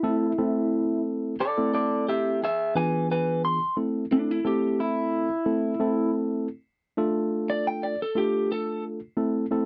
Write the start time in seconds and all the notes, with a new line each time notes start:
Already playing: E4
0.03 A3 C4 E4 A4
0.38 A3 C4 E4 A4
1.40 A4 D5
1.58 A3 C4 E4 A4
1.74 A4 D5
2.09 G4 E5
2.44 G#4 E5
2.75 E3 B3 D4 F4 G#4 B4 G#5
3.11 B4 G#5
3.45 C6
3.77 A3 C4 E4 A4
4.11 A3 C4 D4 E4 A4
4.31 E4
4.45 A3 C4 E4 G4 A4
4.80 E4
5.46 A3 C4 E4 A4
5.80 A3 C4 E4 A4
6.97 A3 D4 F4 A4
7.50 D5
7.67 G5
7.83 D5
8.02 A4
8.15 A3 D4 F4 G4 A4
8.52 A4
9.17 A3 C4 E4 A4
9.51 A3 C4 E4 A4